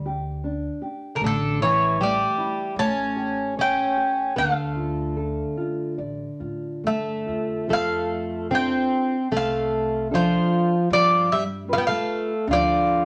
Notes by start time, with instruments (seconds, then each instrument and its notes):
Already playing: upright bass D2
0.06 nylon-string guitar G4
0.44 nylon-string guitar D4
0.82 nylon-string guitar G4
1.15 twelve-string acoustic guitar D3, mandolin A#4
1.21 upright bass A1, twelve-string acoustic guitar D3, nylon-string guitar A3
1.26 mandolin A4
1.60 twelve-string acoustic guitar E3, nylon-string guitar E4, mandolin C#5
1.99 twelve-string acoustic guitar G3, nylon-string guitar A3, mandolin D5
2.38 nylon-string guitar E4
2.76 upright bass A1, nylon-string guitar A3, twelve-string acoustic guitar C#4, mandolin A5
3.16 nylon-string guitar G4
3.57 twelve-string acoustic guitar C#4, nylon-string guitar C#5
3.61 mandolin G5
3.97 nylon-string guitar G4
4.36 upright bass D2, nylon-string guitar D3, twelve-string acoustic guitar A3, mandolin F5
4.76 nylon-string guitar F4
5.17 nylon-string guitar A4
5.57 nylon-string guitar F4
5.98 upright bass A1, nylon-string guitar D5
6.40 upright bass A2, nylon-string guitar F4
6.84 upright bass G2, nylon-string guitar A3, twelve-string acoustic guitar A3, mandolin E5
7.26 upright bass F2, nylon-string guitar F4
7.68 upright bass F2, nylon-string guitar F3, twelve-string acoustic guitar A3
7.73 mandolin F5
8.50 twelve-string acoustic guitar C4, nylon-string guitar D4 F4 A4
8.55 mandolin G5
9.31 upright bass C2, nylon-string guitar C3, twelve-string acoustic guitar A3
9.37 mandolin F5
10.11 twelve-string acoustic guitar F3, nylon-string guitar D4 F4 A4
10.15 mandolin C5
10.90 upright bass G2, twelve-string acoustic guitar F3, nylon-string guitar G3, mandolin D5
11.32 twelve-string acoustic guitar G3, mandolin E5
11.68 nylon-string guitar F4 G4 B4
11.73 twelve-string acoustic guitar B3, mandolin F5
11.78 twelve-string acoustic guitar B3, mandolin G5
11.87 twelve-string acoustic guitar A3, mandolin F5
12.47 upright bass D2, nylon-string guitar D3, twelve-string acoustic guitar F3
12.53 mandolin D5